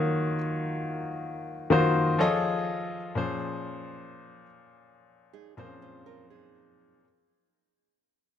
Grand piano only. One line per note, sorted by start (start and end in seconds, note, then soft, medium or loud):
0.00 0.35 D#3 medium
0.00 0.35 A#3 medium
0.00 0.35 F4 medium
0.00 0.36 F#4 medium
0.00 1.72 C5 medium
0.00 0.36 C#5 medium
0.00 2.20 F5 medium
1.70 2.19 D#3 medium
1.70 2.19 A#3 medium
1.70 2.17 F4 medium
1.70 2.20 F#4 medium
1.70 2.20 C5 medium
2.19 2.96 F3 medium
2.19 2.96 F4 medium
2.19 2.97 G#4 medium
2.19 2.97 A4 medium
2.19 2.97 C#5 medium
2.19 2.97 D#5 loud
3.15 4.43 A#2 medium
3.15 4.43 F3 medium
3.15 4.44 C#4 medium
3.15 4.44 G#4 medium
3.15 4.44 C5 medium
5.57 6.53 A#2 medium
5.57 6.53 F3 medium
5.57 5.64 C4 medium
5.57 6.54 G#4 medium
5.57 6.54 C5 medium
5.65 6.57 C#4 medium